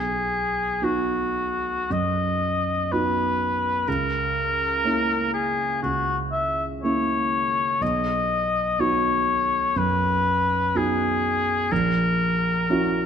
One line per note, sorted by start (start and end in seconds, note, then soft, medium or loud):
0.00 0.78 B1 soft
0.00 0.85 G#4 medium
0.82 1.87 B3 soft
0.82 1.86 D#4 soft
0.82 1.87 F#4 soft
0.82 1.93 F#4 soft
1.90 2.88 F#2 soft
1.90 2.93 D#5 medium
2.92 3.84 B3 soft
2.92 3.84 D#4 soft
2.92 3.84 F#4 soft
2.92 3.89 B4 soft
3.88 4.82 C#2 soft
3.88 5.33 A#4 medium
4.85 5.79 A#3 soft
4.85 5.79 C#4 soft
4.85 5.79 E4 soft
5.34 5.82 G#4 soft
5.83 6.80 C#2 soft
5.83 6.17 F#4 soft
6.32 6.64 E5 medium
6.83 7.78 A#3 soft
6.83 7.78 C#4 soft
6.83 7.78 E4 soft
6.83 7.84 C#5 medium
7.81 8.76 B1 soft
7.81 8.82 D#5 medium
8.79 9.73 B3 soft
8.79 9.73 D#4 soft
8.79 9.73 F#4 soft
8.79 9.79 C#5 medium
9.76 10.71 F#2 soft
9.76 10.78 B4 medium
10.75 11.67 B3 soft
10.75 11.67 D#4 soft
10.75 11.67 F#4 soft
10.75 11.74 G#4 medium
11.72 12.66 A#1 soft
11.72 13.06 A#4 medium
12.70 13.06 C#4 soft
12.70 13.06 E4 soft
12.70 13.06 F#4 soft